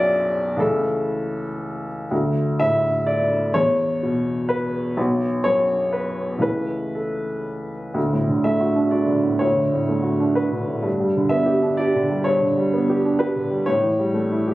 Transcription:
Already playing: B1 F#2 D5 E5
0.56 C#2 E3 A3 E4 A4
2.11 D2
2.60 A2 E5
3.07 D5
3.54 E2 C#5
4.03 B2
4.49 B4
4.97 B1
5.44 F#2 C#5
5.93 B4
6.38 C#2 E3 A3 E4 B4
6.95 A4
7.94 D2
8.13 A2
8.29 D3
8.44 A3 E5
8.60 F#4
8.76 D4
8.91 F#4 D5
9.06 D3
9.23 A2
9.39 D2 C#5
9.57 D3
9.73 A2
9.89 A3
10.03 F#4
10.20 D4
10.35 F#4 B4
10.51 D3
10.68 A2
10.82 G2
11.00 G3
11.17 D3
11.29 B3 E5
11.46 G4
11.62 D4
11.77 G4 D5
11.95 D3
12.10 G3
12.24 G2 C#5
12.42 D3
12.57 G3
12.73 B3
12.90 G4
13.05 D4
13.19 G4 B4
13.36 D3
13.50 G3
13.66 A2 C#5
13.83 E3
13.99 G3
14.14 A3
14.32 E4
14.47 G4

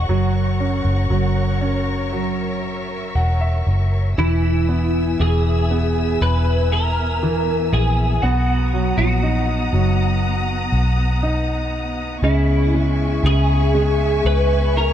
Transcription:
Already playing: C#4 F#4 C#6
0.09 F#1 F#3 A#4 C#5 F#5
0.60 C#4
0.85 F#1
1.10 F#1 F#3
1.61 C#4
2.13 F#3 E5
3.15 E1 F#5
3.41 E5
3.67 F#1
4.17 E1 E3 B3 E4 E5 G#5 E6
4.69 B3
5.20 E1 E3 G#4
5.71 B3
6.21 E1 B4
6.72 A#4
7.23 E3
7.73 A#1 G#4
8.22 B1 B3 F#4 F#5 A#5 D#6
8.73 F#3
8.97 A#1 F#4
9.23 D#4
9.73 F#1 F#3
10.72 B1
11.23 D#4
12.22 C#2 C#3 E4 E5 G#5 C#6
12.74 G#3
13.23 C#2 C#3 G#4
13.75 G#3
14.25 C#2 B4
14.77 A#4

